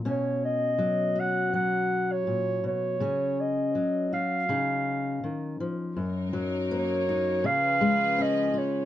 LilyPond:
<<
  \new Staff \with { instrumentName = "Clarinet" } { \time 4/4 \key fis \major \tempo 4 = 82 cis''8 dis''4 fis''8 fis''8. cis''8. cis''8~ | cis''8 dis''4 eis''2 r8 | r4 cis''4 eis''4 dis''8 cis''8 | }
  \new Staff \with { instrumentName = "String section" } { \time 4/4 \key fis \major r1 | r1 | <fis dis' ais'>2 <eis cis' b'>2 | }
  \new Staff \with { instrumentName = "Steel-string acoustic guitar" } { \clef bass \time 4/4 \key fis \major << { cis'4. fis'2~ fis'8 | cis'4. fis'8 dis'2 | r4 ais8 dis'8 r4 cis'8 eis'8 | } \\ { b,4 fis4 fis4 ais,8 b,8 | cis4 fis4 cis4 dis8 eis8 | fis,8 fis4. cis8 gis4. | } >> }
>>